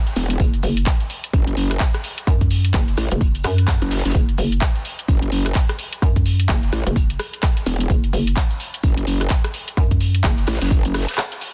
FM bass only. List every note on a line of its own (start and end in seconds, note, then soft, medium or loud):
0.40 0.62 F#1 medium
0.63 0.85 F#1 loud
2.27 2.73 F#2 loud
2.74 2.96 F#1 medium
3.12 3.43 F#1 loud
3.44 3.80 F#2 loud
4.15 4.37 F#1 medium
4.38 4.60 F#1 loud
6.02 6.48 F#2 loud
6.49 6.71 F#1 loud
6.87 7.18 F#1 loud
7.90 8.12 F#1 loud
8.13 8.35 F#1 loud
9.77 10.23 F#2 loud
10.24 10.46 F#1 medium